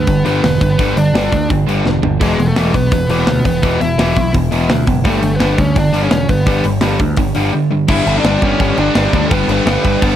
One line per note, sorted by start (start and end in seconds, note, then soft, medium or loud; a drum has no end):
0.00 0.24 B3 medium
0.00 0.26 B4 loud
0.07 0.22 G1 loud
0.07 0.23 G2 medium
0.07 0.24 D3 medium
0.07 kick loud
0.07 open hi-hat medium
0.25 0.40 G1 medium
0.25 0.42 G2 medium
0.25 0.42 D3 medium
0.25 0.42 G3 medium
0.25 0.59 B3 medium
0.25 0.61 B4 medium
0.25 open hi-hat medium
0.43 0.58 E1 medium
0.43 0.59 G2 medium
0.43 0.59 D3 medium
0.43 snare loud
0.43 open hi-hat medium
0.61 0.75 G1 medium
0.61 0.77 G2 medium
0.61 0.77 D3 medium
0.61 0.94 B3 medium
0.61 0.98 B4 loud
0.61 kick medium
0.61 open hi-hat medium
0.79 0.93 G1 medium
0.79 0.96 G2 medium
0.79 0.96 D3 medium
0.79 0.96 G3 medium
0.79 kick loud
0.79 open hi-hat medium
0.96 1.11 G1 medium
0.96 1.13 G2 medium
0.96 1.13 D3 medium
0.96 1.47 D4 medium
0.96 1.47 D5 medium
0.96 open hi-hat medium
1.14 1.28 G1 medium
1.14 1.31 G2 medium
1.14 1.32 D3 loud
1.14 1.32 G3 loud
1.14 snare loud
1.14 open hi-hat medium
1.32 1.47 D2 medium
1.32 1.49 G2 medium
1.32 1.49 D3 medium
1.32 kick medium
1.32 open hi-hat medium
1.50 1.65 G1 medium
1.50 1.66 G2 medium
1.50 1.67 D3 medium
1.50 kick loud
1.50 open hi-hat medium
1.67 1.82 G1 medium
1.67 1.85 G2 medium
1.67 1.85 D3 medium
1.67 1.85 G3 medium
1.67 open hi-hat medium
1.85 2.00 E1 medium
1.85 2.02 G2 medium
1.85 2.02 D3 medium
1.85 snare medium
2.03 2.18 G1 medium
2.03 2.19 G2 medium
2.03 2.20 D3 medium
2.03 floor tom medium
2.21 2.35 E1 medium
2.21 2.38 E2 medium
2.21 2.38 B2 medium
2.21 2.38 E3 loud
2.21 2.46 G#3 medium
2.21 2.46 G#4 medium
2.21 kick loud
2.21 open hi-hat medium
2.21 splash medium
2.38 2.53 E1 medium
2.38 2.55 E2 medium
2.38 2.55 B2 medium
2.38 open hi-hat soft
2.48 2.73 A3 medium
2.48 2.73 A4 medium
2.56 2.71 E1 medium
2.56 2.74 E2 medium
2.56 2.74 B2 medium
2.56 2.74 E3 loud
2.56 snare loud
2.56 open hi-hat medium
2.74 2.89 B1 medium
2.74 2.91 E2 medium
2.74 2.91 B2 medium
2.74 3.08 B3 medium
2.74 3.09 B4 medium
2.74 kick medium
2.74 open hi-hat medium
2.92 3.06 E1 loud
2.92 3.08 E2 medium
2.92 3.08 B2 medium
2.92 kick loud
2.92 open hi-hat medium
3.09 3.24 E1 medium
3.09 3.26 E2 medium
3.09 3.27 B2 medium
3.09 3.27 E3 loud
3.09 3.44 B4 medium
3.09 open hi-hat medium
3.13 3.45 B3 medium
3.27 3.41 D2 medium
3.27 3.43 E2 medium
3.27 3.44 B2 medium
3.27 snare loud
3.27 open hi-hat medium
3.45 3.60 E1 medium
3.45 3.61 E2 medium
3.45 3.61 B2 medium
3.45 3.80 B3 medium
3.45 3.79 B4 medium
3.45 kick medium
3.45 open hi-hat medium
3.62 3.78 E1 medium
3.62 3.79 E2 medium
3.62 3.80 B2 medium
3.62 3.80 E3 loud
3.62 kick loud
3.62 open hi-hat medium
3.81 3.95 E1 medium
3.81 3.97 E2 medium
3.81 3.97 B2 medium
3.81 4.32 E4 medium
3.81 4.31 E5 loud
3.81 open hi-hat medium
3.98 4.13 E1 medium
3.98 4.14 E2 medium
3.98 4.15 B2 medium
3.98 4.15 E3 loud
3.98 snare loud
3.98 open hi-hat medium
4.16 4.31 B1 medium
4.16 4.32 E2 medium
4.16 4.32 B2 medium
4.16 kick medium
4.16 open hi-hat medium
4.33 4.49 E1 loud
4.33 4.49 E2 medium
4.33 4.50 B2 medium
4.33 kick loud
4.33 open hi-hat medium
4.51 4.66 E1 medium
4.51 4.68 E2 medium
4.51 4.68 B2 loud
4.51 4.69 E3 medium
4.51 open hi-hat medium
4.69 4.84 D2 medium
4.69 4.85 E2 medium
4.69 4.85 B2 medium
4.69 snare loud
4.69 open hi-hat medium
4.87 5.05 F#1 loud
4.87 5.03 E2 medium
4.87 5.03 B2 medium
4.87 kick medium
4.87 open hi-hat medium
5.04 5.19 G1 medium
5.04 5.20 G2 loud
5.04 5.21 D3 medium
5.04 5.22 G3 medium
5.04 5.31 A3 medium
5.04 kick loud
5.04 open hi-hat medium
5.10 5.35 A4 medium
5.21 5.37 G1 medium
5.21 5.38 G2 medium
5.21 5.38 D3 medium
5.21 open hi-hat medium
5.35 5.58 B3 medium
5.35 5.60 B4 loud
5.39 5.55 G1 medium
5.39 5.56 G2 medium
5.39 5.57 D3 loud
5.39 5.57 G3 loud
5.39 snare loud
5.39 open hi-hat medium
5.58 5.73 D2 medium
5.58 5.74 G2 medium
5.58 5.74 D3 medium
5.58 5.76 C#4 medium
5.58 5.78 C#5 medium
5.58 kick medium
5.58 open hi-hat medium
5.75 5.90 G1 loud
5.75 5.92 G2 medium
5.75 5.92 D3 medium
5.75 6.02 D4 medium
5.75 6.03 D5 loud
5.75 kick loud
5.75 open hi-hat medium
5.93 6.07 G1 medium
5.93 6.10 G2 medium
5.93 6.10 D3 loud
5.93 6.10 G3 loud
5.93 open hi-hat medium
6.04 6.28 C#4 medium
6.04 6.28 C#5 loud
6.11 6.26 E1 medium
6.11 6.28 G2 medium
6.11 6.28 D3 medium
6.11 snare loud
6.11 open hi-hat medium
6.29 6.44 G1 medium
6.29 6.45 G2 medium
6.29 6.45 D3 medium
6.29 6.63 B3 medium
6.29 6.63 B4 medium
6.29 kick medium
6.29 open hi-hat medium
6.46 6.61 G1 loud
6.46 6.63 G2 medium
6.46 6.63 D3 medium
6.46 6.64 G3 loud
6.46 kick loud
6.46 open hi-hat medium
6.64 6.79 G1 medium
6.64 6.80 G2 medium
6.64 6.80 D3 medium
6.64 open hi-hat medium
6.81 6.96 G1 medium
6.81 6.98 G2 medium
6.81 6.99 D3 loud
6.81 6.99 G3 loud
6.81 snare loud
6.81 open hi-hat medium
6.99 7.14 D2 medium
6.99 7.16 G2 medium
6.99 7.16 D3 medium
6.99 kick medium
6.99 open hi-hat medium
7.17 7.32 G1 medium
7.17 7.34 G2 medium
7.17 7.34 D3 medium
7.17 kick loud
7.17 open hi-hat medium
7.35 7.50 G1 medium
7.35 7.52 G2 medium
7.35 7.52 D3 medium
7.35 7.52 G3 loud
7.35 open hi-hat medium
7.53 7.69 G2 medium
7.53 7.69 D3 medium
7.71 7.87 G2 medium
7.71 7.87 D3 medium
7.88 8.00 G1 medium
7.88 8.05 G2 medium
7.88 8.05 D3 loud
7.88 8.06 G3 loud
7.88 8.61 B3 loud
7.88 8.61 D4 loud
7.88 8.14 E4 medium
7.88 8.15 E5 loud
7.88 kick loud
7.88 crash loud
7.88 crash medium
8.05 8.18 G1 medium
8.05 8.23 G2 medium
8.05 8.23 D3 medium
8.05 8.24 G3 loud
8.05 crash medium
8.18 8.41 D4 medium
8.18 8.42 D5 loud
8.24 8.35 G1 loud
8.24 8.42 G2 medium
8.24 8.41 D3 medium
8.24 8.43 G3 loud
8.24 snare loud
8.24 crash medium
8.42 8.53 G1 medium
8.42 8.59 G2 medium
8.42 8.59 D3 medium
8.42 8.60 G3 medium
8.42 8.76 C#4 medium
8.42 8.77 C#5 loud
8.42 kick medium
8.42 crash medium
8.59 8.71 G1 loud
8.59 8.77 G2 medium
8.59 8.76 D3 loud
8.59 8.78 G3 loud
8.59 9.32 B3 medium
8.59 9.32 D4 medium
8.59 kick loud
8.59 crash medium
8.77 8.89 G1 medium
8.77 8.94 G2 medium
8.77 8.93 D3 medium
8.77 8.95 G3 medium
8.77 9.11 D4 medium
8.77 9.12 D5 loud
8.77 crash medium
8.94 9.06 G1 medium
8.94 9.12 G2 medium
8.94 9.12 D3 medium
8.94 9.13 G3 medium
8.94 snare loud
8.94 crash medium
9.13 9.24 D2 loud
9.13 9.30 G2 medium
9.13 9.30 D3 medium
9.13 9.31 G3 medium
9.13 9.26 D4 medium
9.13 9.27 D5 loud
9.13 kick medium
9.13 crash medium
9.26 9.47 G2 loud
9.26 9.30 A4 medium
9.31 9.42 G1 medium
9.31 9.47 D3 medium
9.31 9.49 G3 loud
9.31 9.47 B3 medium
9.31 10.03 B3 loud
9.31 10.04 D4 loud
9.31 9.50 B4 medium
9.31 kick loud
9.31 crash medium
9.48 9.59 G1 medium
9.48 9.65 G2 medium
9.48 9.65 D3 medium
9.48 9.66 G3 medium
9.48 10.16 B3 medium
9.48 crash medium
9.52 10.16 B4 loud
9.65 9.77 G1 medium
9.65 9.83 G2 medium
9.65 9.83 D3 medium
9.65 9.84 G3 loud
9.65 snare loud
9.65 crash medium
9.83 9.95 G1 medium
9.83 10.01 G2 medium
9.83 10.01 D3 medium
9.83 10.02 G3 medium
9.83 kick medium
9.83 crash medium
10.01 10.13 G1 loud
10.01 10.16 G2 loud
10.01 10.16 D3 loud
10.01 10.16 G3 loud
10.01 10.16 B3 medium
10.01 10.16 D4 medium
10.01 kick loud
10.01 crash medium